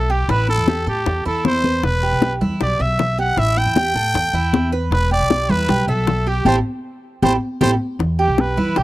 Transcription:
0.00 0.26 B1 medium
0.00 0.13 A4 medium
0.10 0.28 G4 medium
0.10 0.32 G4 medium
0.10 high conga soft
0.28 0.56 A1 loud
0.28 0.66 E4 medium
0.28 0.49 B4 loud
0.28 high bongo medium
0.28 high conga soft
0.48 0.85 A4 medium
0.48 high bongo soft
0.48 high conga soft
0.58 0.85 E2 medium
0.68 0.86 G4 medium
0.68 high bongo medium
0.68 high conga medium
0.87 1.05 A2 medium
0.87 1.24 G4 medium
0.87 1.24 A4 medium
0.87 high bongo soft
0.87 high conga soft
1.06 1.25 E2 medium
1.06 high bongo medium
1.06 high conga soft
1.25 1.81 E2 medium
1.25 1.63 E4 medium
1.25 1.44 A4 medium
1.25 high conga soft
1.45 1.86 C5 loud
1.45 high bongo medium
1.45 low bongo medium
1.45 high conga medium
1.64 2.02 B4 medium
1.64 high bongo soft
1.64 high conga medium
1.83 2.11 E1 medium
1.83 2.34 B4 loud
1.83 high bongo medium
1.83 high conga soft
2.03 2.40 G4 medium
2.03 high conga soft
2.12 2.40 B1 medium
2.22 high bongo medium
2.22 high conga medium
2.41 2.60 E2 medium
2.41 2.60 E4 medium
2.41 high conga soft
2.41 low conga medium
2.60 2.79 B1 medium
2.60 2.79 G4 medium
2.60 2.83 D5 loud
2.60 high bongo medium
2.60 high conga soft
2.79 3.35 B1 medium
2.79 3.17 E5 medium
2.79 3.19 E5 loud
2.79 high conga soft
2.99 high bongo medium
2.99 low bongo medium
2.99 high conga soft
3.18 3.37 G4 medium
3.18 3.40 F#5 loud
3.18 high conga soft
3.37 3.65 A1 loud
3.37 3.75 E4 medium
3.37 3.59 E5 loud
3.37 high bongo medium
3.37 high conga soft
3.57 4.73 G5 loud
3.57 high bongo soft
3.57 high conga soft
3.66 3.94 E2 medium
3.76 3.95 G4 medium
3.76 high bongo medium
3.76 high conga medium
3.95 4.13 A2 medium
3.95 4.33 A4 medium
3.95 high bongo soft
3.95 high conga soft
4.14 4.33 E2 medium
4.14 high bongo medium
4.14 high conga soft
4.33 4.89 E2 medium
4.33 4.71 E4 medium
4.33 high conga soft
4.53 high bongo medium
4.53 low bongo medium
4.53 high conga medium
4.72 5.10 B4 medium
4.72 high bongo soft
4.91 5.19 E1 loud
4.91 5.10 B4 loud
4.91 high bongo medium
4.91 high conga soft
5.11 5.48 G4 medium
5.11 5.52 D5 loud
5.11 high conga soft
5.20 5.48 B1 medium
5.30 high bongo medium
5.30 high conga medium
5.49 5.68 E2 medium
5.49 5.68 E4 medium
5.49 5.88 B4 loud
5.49 high conga soft
5.49 low conga medium
5.68 5.87 B1 medium
5.68 5.88 G4 medium
5.68 high bongo medium
5.68 high conga soft
5.68 low conga medium
5.88 6.43 B1 medium
5.88 6.30 A4 medium
5.88 6.25 E5 medium
5.88 high conga soft
6.07 high bongo medium
6.07 low bongo medium
6.07 high conga soft
6.26 6.45 G4 medium
6.26 6.47 G4 medium
6.26 high conga soft
6.45 6.60 A1 loud
6.45 6.58 E4 medium
6.45 6.58 G4 loud
6.45 6.58 A4 loud
6.45 6.56 C5 medium
6.45 low bongo loud
6.45 high conga loud
7.22 7.37 A1 medium
7.22 7.35 E4 medium
7.22 7.35 G4 medium
7.22 7.35 A4 medium
7.22 7.33 C5 medium
7.22 low bongo loud
7.22 high conga loud
7.61 7.75 A1 medium
7.61 7.73 E4 medium
7.61 7.73 G4 loud
7.61 7.73 A4 medium
7.61 7.71 C5 loud
7.61 low bongo loud
7.61 high conga loud
7.99 8.27 E2 loud
7.99 high bongo medium
7.99 high conga soft
8.19 8.56 G4 medium
8.19 8.42 G4 medium
8.19 high conga soft
8.28 8.56 B1 medium
8.38 8.80 B4 medium
8.38 high bongo medium
8.38 high conga loud
8.57 8.75 E3 medium
8.57 8.76 E4 medium
8.57 high conga soft
8.57 low conga medium
8.76 8.83 B1 medium
8.76 8.83 G4 medium
8.76 high bongo medium
8.76 high conga soft

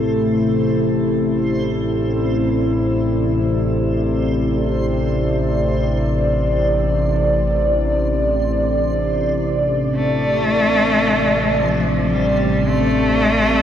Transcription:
0.00 13.62 A1 medium
0.00 13.62 C3 medium
0.00 9.89 A3 medium
0.00 12.89 E4 medium
0.00 13.62 A4 medium
0.00 1.50 C5 medium
0.00 9.92 C5 medium
1.21 13.62 D5 medium
9.93 11.63 A3 loud
9.93 13.62 C5 medium
10.44 13.62 C4 loud
11.25 13.62 G4 medium
11.61 12.15 F3 medium
12.13 12.70 G3 medium
12.67 13.62 A3 loud
12.67 13.62 E5 medium

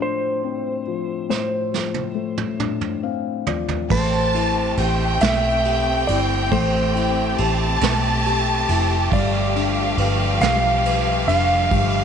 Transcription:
0.00 1.25 A2 medium
0.00 0.82 F3 soft
0.00 1.26 A3 soft
0.00 1.69 D4 soft
0.00 1.29 C5 medium
0.43 2.12 C4 soft
0.87 1.71 F3 soft
1.29 3.87 A2 medium
1.29 3.00 C5 medium
1.29 snare soft
1.72 3.43 F3 soft
1.72 snare medium
1.94 high tom soft
2.15 3.86 A3 soft
2.38 mid tom medium
2.59 3.87 D4 soft
2.59 mid tom medium
2.81 mid tom medium
3.03 3.88 C4 soft
3.03 3.44 F5 medium
3.47 3.89 F3 soft
3.47 3.88 D5 medium
3.47 floor tom medium
3.69 floor tom medium
3.90 4.74 A1 medium
3.90 6.49 A3 medium
3.90 5.21 A3 medium
3.90 9.08 C4 medium
3.90 12.04 G4 medium
3.90 5.26 C5 medium
3.90 4.74 A5 loud
3.90 kick loud
3.90 crash medium
4.35 6.05 E4 medium
4.35 ride soft
4.77 5.19 A1 medium
4.77 5.64 G4 medium
4.77 7.34 G5 loud
4.77 ride soft
5.20 6.04 B1 medium
5.20 6.51 A3 medium
5.20 6.07 E5 loud
5.20 snare loud
5.20 ride medium
5.65 7.35 G4 medium
5.65 ride soft
6.07 6.49 G1 medium
6.07 6.94 E4 medium
6.07 6.19 D5 medium
6.07 ride medium
6.51 7.34 A1 loud
6.51 12.04 A3 medium
6.51 7.81 A3 medium
6.51 7.78 C5 medium
6.51 kick loud
6.51 ride medium
6.95 8.65 E4 medium
6.95 ride soft
7.38 7.80 A1 medium
7.38 8.25 G4 medium
7.38 9.12 A5 loud
7.38 ride medium
7.81 8.64 B1 medium
7.81 9.08 A3 medium
7.81 snare loud
7.81 ride medium
8.25 9.10 G4 medium
8.25 ride soft
8.69 9.09 F1 medium
8.69 9.11 E4 medium
8.69 ride medium
9.11 9.94 G1 loud
9.11 12.04 F3 medium
9.11 10.41 G3 medium
9.11 10.46 D5 medium
9.11 12.04 F5 loud
9.11 kick loud
9.11 ride medium
9.56 11.25 D4 medium
9.56 ride soft
9.97 10.38 G1 loud
9.97 10.84 B4 medium
9.97 ride medium
10.41 11.24 B1 loud
10.41 11.69 G3 medium
10.41 11.24 F5 loud
10.41 snare loud
10.41 ride medium
10.85 12.04 B4 medium
10.85 ride soft
11.27 11.68 F1 medium
11.27 12.04 D4 medium
11.27 12.04 F5 loud
11.27 ride medium
11.71 12.04 G1 loud
11.71 12.04 G3 medium
11.71 kick loud
11.71 ride medium

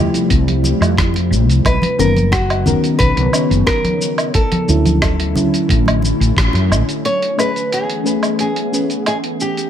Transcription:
0.00 1.62 C3 medium
0.00 1.62 F3 medium
0.00 1.63 G3 medium
0.00 1.61 A3 medium
0.00 1.62 A3 medium
0.00 1.62 E4 loud
0.00 1.63 E4 medium
0.00 1.64 G4 medium
0.14 closed hi-hat soft
0.14 cabasa soft
0.30 0.71 C2 loud
0.30 kick loud
0.30 closed hi-hat medium
0.30 cabasa soft
0.48 closed hi-hat soft
0.48 high conga medium
0.64 muted conga medium
0.64 cabasa medium
0.80 1.32 F2 medium
0.80 closed hi-hat soft
0.80 cabasa soft
0.80 low woodblock medium
0.98 kick loud
0.98 cross-stick medium
0.98 closed hi-hat medium
0.98 cabasa soft
1.14 closed hi-hat soft
1.14 muted conga medium
1.30 1.48 A1 loud
1.30 cabasa medium
1.48 1.59 C2 medium
1.48 closed hi-hat soft
1.48 cabasa soft
1.64 1.76 B1 loud
1.64 4.32 C#3 medium
1.64 4.32 F#3 medium
1.64 4.32 B3 medium
1.64 4.32 D#4 medium
1.64 1.99 B4 loud
1.64 4.32 A#5 medium
1.64 kick loud
1.64 closed hi-hat medium
1.64 cabasa soft
1.64 low woodblock medium
1.82 closed hi-hat soft
1.82 muted conga medium
1.82 high conga loud
1.98 2.73 F#1 medium
1.98 2.10 D#3 medium
1.98 2.10 B3 medium
1.98 2.10 C#4 medium
1.98 2.34 A#4 loud
1.98 2.10 A#4 medium
1.98 cabasa medium
2.16 closed hi-hat soft
2.16 high conga medium
2.16 cabasa soft
2.32 3.02 F#4 medium
2.32 kick medium
2.32 cross-stick loud
2.32 closed hi-hat medium
2.32 cabasa soft
2.50 closed hi-hat soft
2.50 low woodblock medium
2.66 3.29 D#3 medium
2.66 3.29 B3 medium
2.66 3.30 C#4 medium
2.66 3.30 A#4 loud
2.66 low conga loud
2.66 cabasa medium
2.84 closed hi-hat soft
2.84 cabasa soft
2.99 3.11 B1 medium
2.99 3.63 B4 loud
2.99 kick loud
2.99 closed hi-hat medium
2.99 muted conga medium
2.99 cabasa soft
3.16 3.27 B1 loud
3.16 closed hi-hat soft
3.16 high conga medium
3.32 4.32 D#3 medium
3.32 4.32 B3 medium
3.32 4.33 C#4 medium
3.32 4.33 C#5 medium
3.32 cabasa medium
3.32 low woodblock medium
3.50 3.61 F#1 medium
3.50 closed hi-hat soft
3.50 cabasa soft
3.67 4.34 A#4 loud
3.67 kick medium
3.67 cross-stick loud
3.67 closed hi-hat medium
3.67 cabasa soft
3.84 closed hi-hat soft
3.84 high conga medium
4.01 cabasa medium
4.18 closed hi-hat soft
4.18 cabasa soft
4.18 low woodblock medium
4.34 7.01 D3 medium
4.34 7.02 F#3 medium
4.34 7.01 A3 medium
4.34 7.02 C#4 medium
4.34 7.02 E4 medium
4.34 4.98 A4 medium
4.34 kick loud
4.34 closed hi-hat medium
4.34 cabasa soft
4.52 closed hi-hat soft
4.52 muted conga medium
4.52 high conga medium
4.68 5.43 D2 medium
4.68 5.32 D3 medium
4.68 5.32 F#3 medium
4.68 5.32 C#4 medium
4.68 5.32 E4 medium
4.68 cabasa medium
4.85 closed hi-hat soft
4.85 high conga medium
4.85 cabasa soft
5.02 kick loud
5.02 cross-stick loud
5.02 closed hi-hat medium
5.02 cabasa soft
5.02 low woodblock medium
5.20 closed hi-hat soft
5.34 7.01 D3 medium
5.34 7.02 F#3 medium
5.34 7.02 C#4 medium
5.34 7.03 E4 medium
5.34 low conga medium
5.34 cabasa medium
5.54 closed hi-hat soft
5.54 cabasa soft
5.69 6.10 A1 loud
5.69 kick loud
5.69 closed hi-hat medium
5.69 cabasa soft
5.86 closed hi-hat soft
5.86 high conga medium
5.86 low woodblock medium
6.02 muted conga medium
6.02 cabasa medium
6.20 6.31 A1 medium
6.20 closed hi-hat soft
6.20 cabasa soft
6.37 6.48 A1 medium
6.37 kick loud
6.37 cross-stick loud
6.37 closed hi-hat medium
6.37 cabasa soft
6.53 6.71 F#2 medium
6.53 closed hi-hat soft
6.53 muted conga medium
6.70 6.81 A1 medium
6.70 cabasa medium
6.70 low woodblock medium
6.89 closed hi-hat soft
6.89 cabasa soft
7.05 9.38 E3 medium
7.05 9.38 A3 medium
7.05 9.38 B3 medium
7.05 9.38 C#4 medium
7.05 9.38 G#4 medium
7.05 7.39 C#5 medium
7.05 closed hi-hat medium
7.05 cabasa soft
7.22 closed hi-hat soft
7.37 7.49 A3 medium
7.37 7.49 C#4 medium
7.37 7.49 G#4 medium
7.37 7.50 B4 medium
7.37 7.70 B4 medium
7.37 cabasa medium
7.37 low woodblock medium
7.56 closed hi-hat soft
7.56 cabasa soft
7.72 8.39 G#4 medium
7.72 closed hi-hat medium
7.72 cabasa soft
7.90 closed hi-hat soft
8.04 8.68 A3 medium
8.04 8.68 C#4 medium
8.04 8.69 G#4 medium
8.04 8.69 B4 medium
8.04 cabasa medium
8.23 closed hi-hat soft
8.23 cabasa soft
8.23 low woodblock medium
8.39 9.03 G#4 medium
8.39 closed hi-hat medium
8.39 cabasa soft
8.56 closed hi-hat soft
8.72 9.38 A3 medium
8.72 9.38 C#4 medium
8.72 9.38 G#4 medium
8.72 9.39 B4 medium
8.72 cabasa medium
8.90 closed hi-hat soft
8.90 cabasa soft
9.06 9.17 G#4 medium
9.06 closed hi-hat medium
9.06 cabasa soft
9.06 low woodblock medium
9.24 closed hi-hat soft
9.39 9.70 F3 medium
9.39 9.70 A3 medium
9.39 9.70 C4 medium
9.39 9.70 G4 medium
9.39 9.70 E5 medium
9.39 cabasa medium
9.57 closed hi-hat soft
9.57 cabasa soft

